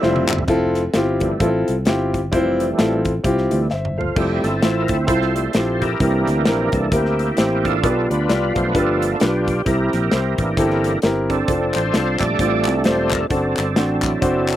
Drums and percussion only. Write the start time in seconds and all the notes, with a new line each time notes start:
0.03 snare
0.16 high tom
0.29 clap, mid tom
0.38 floor tom
0.48 kick, closed hi-hat
0.75 snare, closed hi-hat
0.94 snare, closed hi-hat
1.20 kick, closed hi-hat
1.40 kick, closed hi-hat
1.68 closed hi-hat
1.85 snare, closed hi-hat
2.14 kick, closed hi-hat
2.33 kick, closed hi-hat
2.60 closed hi-hat
2.79 snare, closed hi-hat
3.05 kick, closed hi-hat
3.24 kick, closed hi-hat
3.38 snare
3.51 closed hi-hat
3.70 snare
3.85 mid tom
4.01 floor tom
4.16 kick, crash
4.44 snare, closed hi-hat
4.62 snare, closed hi-hat
4.88 kick, closed hi-hat
5.08 kick, closed hi-hat
5.22 snare
5.36 closed hi-hat
5.53 snare, closed hi-hat
5.82 kick, closed hi-hat
6.00 kick, closed hi-hat
6.27 snare, closed hi-hat
6.45 snare, closed hi-hat
6.72 kick, closed hi-hat
6.92 kick, closed hi-hat
7.05 snare
7.19 closed hi-hat
7.37 snare, closed hi-hat
7.65 kick, closed hi-hat
7.84 kick, closed hi-hat
8.11 closed hi-hat
8.29 snare, closed hi-hat
8.56 kick, closed hi-hat
8.75 kick, closed hi-hat
9.02 closed hi-hat
9.20 snare, closed hi-hat
9.48 kick, closed hi-hat
9.66 kick, closed hi-hat
9.93 snare, closed hi-hat
10.12 snare, closed hi-hat
10.38 kick, closed hi-hat
10.57 kick, closed hi-hat
10.70 snare
10.84 closed hi-hat
11.02 snare, closed hi-hat
11.30 kick, closed hi-hat
11.48 kick, closed hi-hat
11.74 clap, closed hi-hat
11.94 snare, closed hi-hat
12.20 kick, clap, closed hi-hat
12.39 kick, closed hi-hat
12.65 clap, closed hi-hat
12.84 snare, closed hi-hat
13.11 kick, clap, closed hi-hat
13.30 kick, closed hi-hat
13.57 snare, clap, closed hi-hat
13.76 snare, closed hi-hat
14.02 kick, clap, closed hi-hat
14.22 kick, closed hi-hat
14.49 clap, closed hi-hat